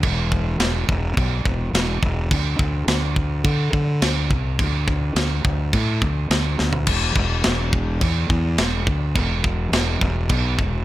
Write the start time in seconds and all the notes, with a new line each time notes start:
0.03 E1, kick, china
0.32 kick
0.60 E1, snare, china
0.89 E1, kick
1.17 B1, kick, china
1.45 E1, kick
1.73 E1, snare, china
2.02 E1, kick
2.31 D2, kick, china
2.59 D2, kick
2.87 D2, snare, china
3.16 kick
3.44 D3, kick, china
3.73 D3, kick
4.02 D2, snare, china
4.30 C2, kick
4.59 D2, kick, china
4.88 kick
5.15 D2, snare, china
5.44 D2, kick
5.73 A2, kick, china
6.02 D2, kick
6.30 D2, snare, china
6.59 D2, snare
6.73 floor tom
6.87 E1, kick, crash, china
7.15 E1, kick
7.44 E1, snare, china
7.73 kick
8.01 E2, kick, china
8.29 E2, kick
8.58 E1, snare, china
8.87 D2, kick
9.15 E1, kick, china
9.44 kick
9.72 E1, snare, china
10.01 E1, kick
10.29 B1, kick, china
10.58 E1, kick